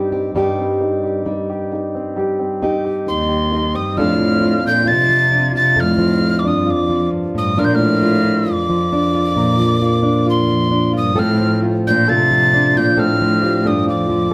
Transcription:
0.00 0.30 G2 medium
0.00 0.30 G3 medium
0.00 0.34 G3 medium
0.00 0.12 C4 medium
0.00 0.31 D#4 medium
0.00 0.45 D#4 medium
0.00 0.11 G4 medium
0.00 0.35 G4 medium
0.12 0.45 C4 medium
0.12 0.30 G4 medium
0.35 3.91 G2 medium
0.35 1.25 G3 medium
0.35 2.15 G3 medium
0.35 2.61 D#4 medium
0.35 1.02 G4 medium
0.35 2.63 G4 medium
0.58 1.93 C4 medium
0.81 1.25 D#4 medium
1.04 1.48 G4 medium
1.26 3.92 G3 medium
1.26 1.71 D#4 medium
1.50 2.16 G4 medium
1.73 2.61 D#4 medium
1.95 2.38 C4 medium
2.16 4.06 G3 medium
2.16 2.83 G4 medium
2.39 3.73 C4 medium
2.62 3.06 D#4 medium
2.62 3.92 D#4 medium
2.62 3.93 G4 medium
2.85 3.27 G4 medium
3.07 3.78 D#2 medium
3.07 3.50 D#4 medium
3.07 3.77 C6 medium
3.29 4.06 G4 medium
3.52 4.06 D#4 medium
3.74 4.02 G2 medium
3.74 4.06 C4 medium
3.74 3.99 D#6 medium
3.97 5.75 F2 medium
3.97 4.67 A2 loud
3.97 4.18 F3 medium
3.97 4.65 D4 medium
3.97 4.41 F4 medium
3.97 5.75 A4 medium
3.97 4.65 F6 loud
4.18 5.08 F3 medium
4.41 4.86 F4 medium
4.65 4.93 A#2 medium
4.65 5.31 D4 medium
4.65 4.89 G6 loud
4.86 5.54 F4 medium
4.86 5.55 A6 loud
4.91 5.57 C3 medium
5.09 5.98 F3 medium
5.31 6.44 D4 medium
5.55 6.21 F4 medium
5.55 5.82 A6 loud
5.60 5.83 C3 medium
5.76 7.12 F2 medium
5.76 7.52 A4 medium
5.80 6.41 A2 medium
5.80 6.41 F6 loud
5.98 6.89 F3 medium
6.21 6.67 F4 medium
6.39 6.49 F2 medium
6.39 6.49 D6 medium
6.45 6.72 G2 medium
6.45 7.58 D4 medium
6.45 6.72 D#6 medium
6.67 7.10 F2 medium
6.67 7.58 F4 medium
6.67 7.10 D6 loud
6.89 7.57 F3 medium
7.13 7.34 G2 medium
7.35 7.62 G2 medium
7.35 7.57 A2 medium
7.35 7.61 D#6 medium
7.57 7.64 A#2 medium
7.57 7.80 F3 medium
7.57 8.25 D4 medium
7.57 8.02 F4 medium
7.57 9.36 A#4 medium
7.57 7.66 F6 loud
7.64 7.75 A#2 medium
7.64 7.77 G6 medium
7.73 8.53 A2 loud
7.73 8.53 F6 loud
7.80 8.69 F3 medium
8.03 8.46 F4 medium
8.25 8.92 D4 medium
8.46 9.15 F4 medium
8.51 10.30 F2 medium
8.51 10.29 D6 loud
8.70 9.58 F3 medium
8.93 10.02 D4 medium
9.15 9.81 F4 medium
9.36 11.12 A#2 medium
9.36 11.12 A#4 medium
9.59 10.47 F3 medium
9.82 10.25 F4 medium
10.03 10.70 D4 medium
10.27 10.92 F4 medium
10.27 10.92 C6 loud
10.31 10.93 F2 medium
10.48 11.39 F3 medium
10.71 11.12 D4 medium
10.93 11.11 F4 medium
10.93 11.21 D#6 medium
10.98 11.22 G2 medium
11.15 12.96 A2 medium
11.15 11.61 C4 medium
11.15 12.96 A4 medium
11.15 12.06 A4 medium
11.15 11.59 F6 loud
11.21 11.60 A2 loud
11.40 12.30 F3 medium
11.62 12.96 C4 medium
11.62 12.08 F4 medium
11.87 12.12 A#2 medium
11.87 12.52 D4 medium
11.87 12.11 G6 loud
12.08 12.80 C3 medium
12.08 12.76 F4 medium
12.08 13.43 A4 medium
12.08 12.79 A6 loud
12.31 13.20 F3 medium
12.53 13.85 D4 medium
12.53 13.64 D4 medium
12.77 13.02 A#2 medium
12.77 13.43 F4 medium
12.77 13.01 G6 loud
12.97 14.31 A2 medium
12.97 13.69 A2 medium
12.97 14.34 C4 medium
12.97 14.34 A4 medium
12.97 13.69 F6 loud
13.21 14.08 F3 medium
13.42 13.87 F4 medium
13.42 13.63 G4 medium
13.65 13.89 G2 medium
13.65 14.34 D4 medium
13.65 14.29 A4 medium
13.65 13.89 D#6 medium
13.87 14.34 D4 medium
13.87 14.34 F4 medium
13.87 14.34 D6 medium
13.92 14.34 F2 medium
14.09 14.34 F3 medium

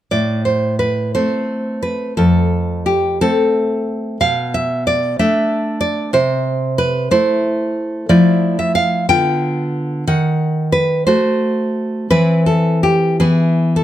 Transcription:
0.11 1.12 A2 soft
0.11 0.44 D5 medium
0.45 0.79 C5 soft
0.79 1.13 B4 soft
1.15 2.14 A3 soft
1.15 2.14 C4 soft
1.15 1.81 C5 medium
1.83 2.16 B4 medium
2.17 3.18 F2 soft
2.17 2.84 A4 medium
2.86 3.19 G4 soft
3.21 4.17 A3 soft
3.21 4.17 C4 soft
3.21 4.17 A4 medium
4.21 5.16 B2 soft
4.21 4.52 F5 medium
4.54 4.85 E5 medium
4.87 5.18 D5 medium
5.19 6.10 A3 soft
5.19 6.10 D4 soft
5.19 5.79 E5 medium
5.81 6.12 D5 medium
6.13 7.08 C3 soft
6.13 6.76 C5 medium
6.78 7.09 B4 medium
7.11 8.06 A3 soft
7.11 8.06 E4 soft
7.11 8.06 C5 medium
8.09 9.06 F3 soft
8.09 9.05 A3 soft
8.09 9.05 E4 soft
8.09 8.57 D5 medium
8.59 8.75 E5 medium
8.75 9.07 F5 medium
9.09 10.04 D3 medium
9.09 10.03 B3 soft
9.09 10.04 F4 soft
9.09 10.03 G5 medium
10.07 11.04 D#3 soft
10.07 10.70 F#5 medium
10.72 11.05 B4 medium
11.07 12.08 A3 soft
11.07 12.08 F#4 soft
11.07 12.08 C5 medium
12.10 13.17 E3 soft
12.10 13.16 C4 soft
12.10 13.16 E4 soft
12.10 12.46 B4 medium
12.46 12.82 A4 soft
12.83 13.19 G4 medium
13.20 13.84 E3 soft
13.20 13.84 B3 soft
13.20 13.84 E4 soft
13.20 13.74 G#4 medium
13.76 13.84 A4 soft

